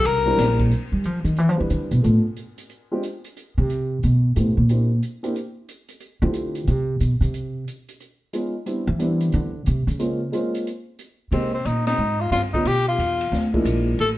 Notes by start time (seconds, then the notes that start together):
0.05 C2 A#4, ride
0.25 G3 C4 D4 E4 A#4
0.37 A#1, snare, hi-hat pedal, ride
0.59 kick, ride
0.71 closed hi-hat
0.92 G3
1.04 F3, closed hi-hat
1.25 D#3, closed hi-hat
1.37 E3, closed hi-hat
1.49 F3
1.57 E3 G3 C4 D4 E4 B4
1.70 D3, closed hi-hat
1.91 B2, closed hi-hat
2.02 A2 A3 B3 D4 F4 A4, closed hi-hat
2.37 closed hi-hat
2.58 closed hi-hat
2.70 closed hi-hat
2.91 G#3 C4 D4 F4 G4
3.03 closed hi-hat
3.25 closed hi-hat
3.37 closed hi-hat
3.58 C3
3.70 closed hi-hat
4.03 B2, closed hi-hat
4.36 A2 A3 B3 C4 E4 G4, closed hi-hat
4.57 A#2
4.69 A#3 C4 D4 E4 G4, closed hi-hat
5.03 closed hi-hat
5.23 A#3 C4 D4 E4 G4, closed hi-hat
5.36 closed hi-hat
5.69 closed hi-hat
5.89 closed hi-hat
6.00 closed hi-hat
6.22 D3 A3 C4 E4 F4 G4
6.34 closed hi-hat
6.55 closed hi-hat
6.67 C3, closed hi-hat
7.00 B2, closed hi-hat
7.21 C3, closed hi-hat
7.34 closed hi-hat
7.68 closed hi-hat
7.89 closed hi-hat
8.00 closed hi-hat
8.33 G#3 B3 C#4 D#4 F4, closed hi-hat
8.66 G3 B3 C4 D4 E4, closed hi-hat
8.87 E3
8.99 G3 B3 C4 D4 E4, closed hi-hat
9.21 closed hi-hat
9.32 D3, closed hi-hat
9.66 C3, closed hi-hat
9.87 C#3, closed hi-hat
9.99 G#3 A#3 C4 C#4 F4, closed hi-hat
10.32 G#3 A#3 C4 C#4 F4, closed hi-hat
10.55 closed hi-hat
10.67 closed hi-hat
10.99 closed hi-hat
11.31 C3 G#3 A#3 C4 D#4 G4, ride
11.54 C4
11.65 A#2 D#4, hi-hat pedal, ride
11.87 D#4, snare, ride
11.98 G#2
12.21 F4
12.31 G2 F4, snare, hi-hat pedal, ride
12.53 D3 A3 B3 C#4 D#4 F4, kick, ride
12.65 B2 G4, ride
12.88 F4
12.98 E2, hi-hat pedal, ride
13.21 ride
13.32 D2, snare
13.54 F3 G#3 A#3 D4 E4, kick
13.64 A#1, hi-hat pedal, ride
13.99 A1 A4, ride